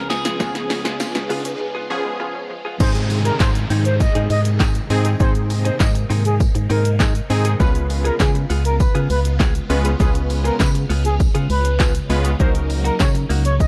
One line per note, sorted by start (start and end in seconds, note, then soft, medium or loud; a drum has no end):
0.00 0.31 C#2 medium
0.00 2.76 C#3 medium
0.00 0.11 F3 medium
0.00 2.76 G#3 medium
0.00 0.11 B3 medium
0.00 2.76 B3 medium
0.00 0.12 C#4 medium
0.00 2.76 F4 medium
0.00 0.12 G#4 medium
0.00 riser medium
0.10 0.21 F3 medium
0.10 2.46 G#4 medium
0.10 muted clean electric guitar stroke soft
0.10 snare loud
0.10 tambourine medium
0.10 shaker medium
0.25 0.36 F3 medium
0.25 0.36 B3 medium
0.25 0.35 F4 medium
0.25 0.35 G#4 medium
0.25 snare loud
0.25 closed hi-hat medium
0.25 shaker medium
0.39 1.04 C#2 loud
0.39 0.51 F3 loud
0.39 1.22 F3 medium
0.39 0.53 B3 medium
0.39 1.22 B3 medium
0.39 1.22 C#4 medium
0.39 0.53 F4 medium
0.39 1.22 G#4 medium
0.39 0.54 G#4 loud
0.39 kick loud
0.39 snare loud
0.39 tambourine soft
0.39 shaker medium
0.55 0.66 B3 medium
0.55 snare loud
0.55 closed hi-hat medium
0.55 shaker medium
0.70 0.81 C#4 medium
0.70 muted clean electric guitar stroke soft
0.70 snare loud
0.70 open hi-hat medium
0.70 tambourine soft
0.70 shaker medium
0.85 0.96 G#3 medium
0.85 0.96 B3 medium
0.85 0.96 F4 medium
0.85 0.95 G#4 medium
0.85 snare loud
0.85 closed hi-hat medium
0.85 shaker medium
1.00 1.11 F4 medium
1.00 muted clean electric guitar stroke medium
1.00 snare loud
1.00 tambourine medium
1.00 shaker medium
1.15 1.28 C#2 medium
1.15 1.26 C#4 medium
1.15 muted clean electric guitar stroke medium
1.15 snare loud
1.15 closed hi-hat medium
1.15 shaker medium
1.30 1.56 C#3 medium
1.30 1.43 B3 medium
1.30 1.41 F4 medium
1.30 1.43 F4 medium
1.30 1.44 G#4 loud
1.30 open hi-hat medium
1.30 tambourine soft
1.30 shaker medium
1.45 1.56 C#4 medium
1.45 closed hi-hat medium
1.45 shaker medium
1.60 muted clean electric guitar stroke soft
1.75 1.89 B3 medium
1.75 1.88 F4 medium
1.75 1.88 G#4 medium
1.90 2.51 F3 medium
1.90 2.51 B3 medium
1.90 2.01 C#4 medium
1.90 2.51 C#4 medium
1.90 2.52 G#4 loud
2.05 2.16 G#3 medium
2.05 muted clean electric guitar stroke medium
2.20 2.33 B3 medium
2.20 2.31 F4 loud
2.20 2.33 F4 medium
2.20 2.34 G#4 medium
2.35 2.46 C#4 medium
2.35 muted clean electric guitar stroke soft
2.50 2.61 F3 medium
2.50 muted clean electric guitar stroke soft
2.65 2.76 F3 medium
2.65 2.76 B3 medium
2.65 2.76 F4 medium
2.65 2.75 G#4 medium
2.80 3.31 G#2 loud
2.80 7.56 C3 medium
2.80 7.56 D#3 medium
2.80 5.18 G#3 medium
2.80 2.93 C4 medium
2.80 3.62 C4 medium
2.80 7.56 D#4 medium
2.80 3.62 D#4 medium
2.80 2.93 D#4 medium
2.80 3.62 G#4 medium
2.80 2.94 G#4 medium
2.80 2.90 C5 loud
2.80 kick loud
2.80 crash loud
2.80 downlifter medium
2.80 shaker medium
2.95 muted clean electric guitar stroke soft
2.95 closed hi-hat medium
2.95 shaker medium
3.10 muted clean electric guitar stroke soft
3.10 open hi-hat medium
3.10 tambourine medium
3.10 shaker medium
3.25 3.36 C4 medium
3.25 3.36 D#4 medium
3.25 3.35 G#4 medium
3.25 3.35 A#4 medium
3.25 closed hi-hat medium
3.25 shaker medium
3.40 3.66 G#2 loud
3.40 3.50 C5 medium
3.40 kick loud
3.40 snare medium
3.40 clap loud
3.40 tambourine medium
3.40 shaker medium
3.55 muted clean electric guitar stroke medium
3.55 closed hi-hat medium
3.55 shaker medium
3.70 4.08 G#2 loud
3.70 3.83 C4 medium
3.70 3.84 D#4 medium
3.70 3.84 G#4 medium
3.70 open hi-hat medium
3.70 tambourine medium
3.70 shaker medium
3.85 3.95 C5 medium
3.85 muted clean electric guitar stroke medium
3.85 closed hi-hat medium
3.85 shaker medium
4.00 4.20 D#5 medium
4.00 muted clean electric guitar stroke soft
4.00 kick loud
4.00 tambourine medium
4.00 shaker medium
4.15 4.28 G#2 medium
4.15 4.29 C4 medium
4.15 4.29 D#4 medium
4.15 4.28 G#4 medium
4.15 closed hi-hat medium
4.15 shaker medium
4.30 4.81 G#2 medium
4.30 4.40 D#5 medium
4.30 open hi-hat medium
4.30 tambourine soft
4.30 shaker medium
4.45 muted clean electric guitar stroke soft
4.45 closed hi-hat medium
4.45 shaker medium
4.60 4.73 C4 medium
4.60 4.73 D#4 medium
4.60 4.74 G#4 loud
4.60 kick loud
4.60 snare medium
4.60 clap loud
4.60 tambourine medium
4.60 shaker medium
4.75 muted clean electric guitar stroke soft
4.75 closed hi-hat medium
4.75 shaker medium
4.90 5.16 G#2 medium
4.90 5.10 C4 medium
4.90 5.11 D#4 medium
4.90 5.11 G#4 loud
4.90 muted clean electric guitar stroke soft
4.90 open hi-hat medium
4.90 tambourine medium
4.90 shaker medium
5.05 5.16 C4 medium
5.05 5.16 D#4 medium
5.05 5.15 G#4 medium
5.05 closed hi-hat medium
5.05 shaker medium
5.20 5.71 G#2 loud
5.20 7.58 A#3 medium
5.20 5.33 C4 medium
5.20 6.02 C4 medium
5.20 6.02 D#4 medium
5.20 5.33 D#4 medium
5.20 6.02 G#4 medium
5.20 5.34 G#4 medium
5.20 5.30 C5 loud
5.20 kick loud
5.20 tambourine soft
5.20 shaker medium
5.35 closed hi-hat medium
5.35 shaker medium
5.50 muted clean electric guitar stroke soft
5.50 open hi-hat medium
5.50 tambourine medium
5.50 shaker medium
5.65 5.76 C4 medium
5.65 5.76 D#4 medium
5.65 5.75 G#4 medium
5.65 5.75 C5 medium
5.65 closed hi-hat medium
5.65 shaker medium
5.80 6.06 G#2 loud
5.80 5.90 D#5 medium
5.80 muted clean electric guitar stroke soft
5.80 kick loud
5.80 snare loud
5.80 clap loud
5.80 tambourine medium
5.80 shaker medium
5.95 muted clean electric guitar stroke medium
5.95 closed hi-hat medium
5.95 shaker medium
6.10 6.48 G#2 medium
6.10 6.23 C4 medium
6.10 6.23 D#4 medium
6.10 6.24 G#4 loud
6.10 open hi-hat medium
6.10 tambourine medium
6.10 shaker medium
6.25 6.35 G#4 medium
6.25 muted clean electric guitar stroke soft
6.25 closed hi-hat medium
6.25 shaker medium
6.40 kick loud
6.40 tambourine medium
6.40 shaker medium
6.55 6.68 G#2 medium
6.55 muted clean electric guitar stroke medium
6.55 closed hi-hat medium
6.55 shaker medium
6.70 7.21 G#2 medium
6.70 6.83 C4 medium
6.70 6.83 D#4 medium
6.70 6.84 G#4 medium
6.70 6.90 A#4 medium
6.70 open hi-hat medium
6.70 shaker medium
6.85 closed hi-hat medium
6.85 shaker medium
7.00 7.13 C4 medium
7.00 7.13 D#4 medium
7.00 7.14 G#4 medium
7.00 kick loud
7.00 snare medium
7.00 clap loud
7.00 tambourine medium
7.00 shaker medium
7.15 closed hi-hat medium
7.15 shaker medium
7.30 7.56 G#2 medium
7.30 7.50 C4 medium
7.30 7.51 D#4 medium
7.30 7.51 G#4 loud
7.30 muted clean electric guitar stroke soft
7.30 open hi-hat medium
7.30 tambourine medium
7.30 shaker medium
7.45 7.56 C4 medium
7.45 7.56 D#4 medium
7.45 7.55 G#4 medium
7.45 closed hi-hat medium
7.45 shaker medium
7.60 8.11 C#2 loud
7.60 13.68 C#3 medium
7.60 8.42 G#3 medium
7.60 12.36 G#3 medium
7.60 7.73 B3 loud
7.60 8.42 B3 medium
7.60 12.36 B3 medium
7.60 8.42 C#4 medium
7.60 8.42 F4 medium
7.60 12.36 F4 medium
7.60 7.73 F4 loud
7.60 7.74 G#4 loud
7.60 7.70 B4 loud
7.60 8.42 B4 medium
7.60 kick loud
7.60 tambourine soft
7.60 shaker medium
7.75 closed hi-hat medium
7.75 shaker medium
7.90 muted clean electric guitar stroke soft
7.90 open hi-hat medium
7.90 tambourine soft
7.90 shaker medium
8.05 8.16 B3 medium
8.05 8.15 F4 medium
8.05 8.15 G#4 medium
8.05 8.15 A#4 medium
8.05 closed hi-hat medium
8.05 shaker medium
8.20 8.46 C#3 loud
8.20 8.30 G#4 medium
8.20 kick loud
8.20 snare loud
8.20 clap loud
8.20 tambourine medium
8.20 shaker medium
8.35 muted clean electric guitar stroke medium
8.35 closed hi-hat medium
8.35 shaker medium
8.50 8.88 C#2 medium
8.50 8.63 B3 medium
8.50 8.63 F4 medium
8.50 8.63 G#4 medium
8.50 open hi-hat medium
8.50 tambourine medium
8.50 shaker medium
8.65 8.75 A#4 medium
8.65 closed hi-hat medium
8.65 shaker medium
8.80 9.00 B4 medium
8.80 muted clean electric guitar stroke soft
8.80 kick loud
8.80 tambourine medium
8.80 shaker medium
8.95 9.08 C#3 medium
8.95 9.09 B3 medium
8.95 9.08 F4 medium
8.95 9.08 G#4 loud
8.95 closed hi-hat medium
8.95 shaker medium
9.10 9.61 C#2 medium
9.10 9.20 B4 medium
9.10 muted clean electric guitar stroke soft
9.10 open hi-hat medium
9.10 tambourine soft
9.10 shaker medium
9.25 muted clean electric guitar stroke soft
9.25 closed hi-hat medium
9.25 shaker medium
9.40 9.53 B3 medium
9.40 9.53 F4 medium
9.40 9.54 G#4 medium
9.40 kick loud
9.40 snare medium
9.40 clap loud
9.40 tambourine medium
9.40 shaker medium
9.55 closed hi-hat medium
9.55 shaker medium
9.69 9.95 C#2 medium
9.69 9.90 G#3 loud
9.69 9.90 B3 medium
9.69 9.90 C#4 medium
9.69 9.90 F4 medium
9.69 9.90 B4 loud
9.69 muted clean electric guitar stroke soft
9.69 open hi-hat medium
9.69 tambourine medium
9.69 shaker medium
9.85 9.96 B3 medium
9.85 9.96 F4 medium
9.85 9.95 G#4 medium
9.85 closed hi-hat medium
9.85 shaker medium
10.00 10.51 C#2 loud
10.00 10.82 G#3 medium
10.00 10.13 B3 loud
10.00 10.82 B3 medium
10.00 10.82 C#4 medium
10.00 10.82 F4 medium
10.00 10.13 F4 loud
10.00 10.10 G#4 loud
10.00 10.14 G#4 loud
10.00 10.82 B4 medium
10.00 kick loud
10.00 tambourine soft
10.00 shaker medium
10.15 muted clean electric guitar stroke soft
10.15 closed hi-hat medium
10.15 shaker medium
10.30 muted clean electric guitar stroke soft
10.30 open hi-hat medium
10.30 tambourine medium
10.30 shaker medium
10.44 10.56 B3 medium
10.44 10.55 F4 medium
10.44 10.55 G#4 medium
10.44 10.55 A#4 medium
10.44 closed hi-hat medium
10.44 shaker medium
10.60 10.86 C#3 loud
10.60 10.70 B4 medium
10.60 kick loud
10.60 snare medium
10.60 clap loud
10.60 tambourine medium
10.60 shaker medium
10.75 muted clean electric guitar stroke soft
10.75 closed hi-hat medium
10.75 shaker medium
10.89 11.28 C#2 medium
10.89 11.03 B3 medium
10.89 11.03 F4 medium
10.89 11.03 G#4 medium
10.89 open hi-hat medium
10.89 tambourine soft
10.89 shaker medium
11.05 11.15 G#4 medium
11.05 muted clean electric guitar stroke soft
11.05 closed hi-hat medium
11.05 shaker medium
11.20 muted clean electric guitar stroke soft
11.20 kick loud
11.20 tambourine medium
11.20 shaker medium
11.35 11.48 C#3 medium
11.35 11.48 B3 medium
11.35 11.48 F4 medium
11.35 11.48 G#4 medium
11.35 closed hi-hat medium
11.35 shaker medium
11.50 12.01 C#2 medium
11.50 11.92 B4 medium
11.50 muted clean electric guitar stroke soft
11.50 open hi-hat medium
11.50 tambourine soft
11.50 shaker medium
11.65 muted clean electric guitar stroke medium
11.65 closed hi-hat medium
11.65 shaker medium
11.79 11.93 B3 medium
11.79 11.93 F4 medium
11.79 11.94 G#4 medium
11.79 kick loud
11.79 snare medium
11.79 clap loud
11.79 tambourine medium
11.79 shaker medium
11.95 closed hi-hat medium
11.95 shaker medium
12.09 12.35 C#2 medium
12.09 12.30 G#3 medium
12.09 12.30 B3 medium
12.09 12.30 C#4 medium
12.09 12.30 F4 medium
12.09 12.30 B4 loud
12.09 muted clean electric guitar stroke soft
12.09 open hi-hat medium
12.09 tambourine medium
12.09 shaker medium
12.24 12.36 B3 medium
12.24 12.35 F4 medium
12.24 12.35 G#4 medium
12.24 closed hi-hat medium
12.24 shaker medium
12.39 12.91 C#2 loud
12.39 13.22 F#3 medium
12.39 13.68 F#3 medium
12.39 12.53 A#3 medium
12.39 13.22 A#3 medium
12.39 13.68 A#3 medium
12.39 13.22 C#4 medium
12.39 13.22 D#4 medium
12.39 13.68 D#4 medium
12.39 12.53 D#4 loud
12.39 12.53 F#4 loud
12.39 13.22 A#4 medium
12.39 12.50 C5 loud
12.39 kick loud
12.39 shaker medium
12.55 closed hi-hat medium
12.55 shaker medium
12.69 muted clean electric guitar stroke soft
12.69 open hi-hat medium
12.69 tambourine soft
12.69 shaker medium
12.84 12.96 A#3 medium
12.84 12.95 D#4 medium
12.84 12.95 F#4 medium
12.84 12.95 A#4 medium
12.84 closed hi-hat medium
12.84 shaker medium
13.00 13.26 C#3 loud
13.00 13.10 C#5 medium
13.00 kick loud
13.00 snare medium
13.00 clap loud
13.00 tambourine medium
13.00 shaker medium
13.15 muted clean electric guitar stroke medium
13.15 closed hi-hat medium
13.15 shaker medium
13.29 13.68 C#2 medium
13.29 13.43 A#3 medium
13.29 13.43 D#4 medium
13.29 13.44 F#4 medium
13.29 open hi-hat medium
13.29 tambourine soft
13.29 shaker medium
13.45 13.55 C#5 medium
13.45 muted clean electric guitar stroke soft
13.45 closed hi-hat medium
13.45 shaker medium
13.60 13.68 D#5 medium
13.60 muted clean electric guitar stroke soft
13.60 kick loud
13.60 tambourine medium
13.60 shaker medium